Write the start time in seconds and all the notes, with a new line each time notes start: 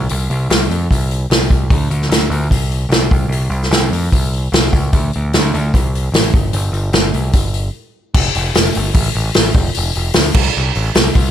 0.09 C2, open hi-hat
0.30 C2, open hi-hat
0.50 C2, snare, open hi-hat
0.70 F2, open hi-hat
0.91 C2, kick, open hi-hat
1.11 open hi-hat
1.30 C2, snare, open hi-hat
1.50 C2, kick, open hi-hat
1.70 D2, kick, open hi-hat
1.90 D2, open hi-hat
2.02 snare
2.09 D2, snare, open hi-hat
2.30 D2, open hi-hat
2.50 C2, kick, open hi-hat
2.72 open hi-hat
2.89 C2, snare, open hi-hat
3.11 C2, kick, open hi-hat
3.28 C2, open hi-hat
3.50 C2, open hi-hat
3.63 snare
3.71 C2, snare, open hi-hat
3.91 F2, open hi-hat
4.12 C2, kick, open hi-hat
4.33 open hi-hat
4.52 C2, snare, open hi-hat
4.72 C#2, kick, open hi-hat
4.93 D2, kick, open hi-hat
5.13 D2, open hi-hat
5.33 D2, snare, open hi-hat
5.54 D2, open hi-hat
5.74 C2, kick, open hi-hat
5.95 open hi-hat
6.12 A1, snare, open hi-hat
6.34 G1, kick, open hi-hat
6.53 G1, open hi-hat
6.72 G1, open hi-hat
6.93 G1, snare, open hi-hat
7.14 C2, open hi-hat
7.33 G1, kick, open hi-hat
7.54 open hi-hat
8.14 F1, kick, crash
8.35 F1, open hi-hat
8.54 F1, snare, open hi-hat
8.75 G1, open hi-hat
8.94 A1, kick, open hi-hat
9.15 A1, open hi-hat
9.34 A1, snare, open hi-hat
9.54 F1, kick, open hi-hat
9.74 F1, open hi-hat
9.95 F1, open hi-hat
10.13 D2, snare, open hi-hat
10.34 C2, kick, crash
10.57 C2
10.75 A1, open hi-hat
10.95 C2, snare, open hi-hat
11.15 C2, kick, open hi-hat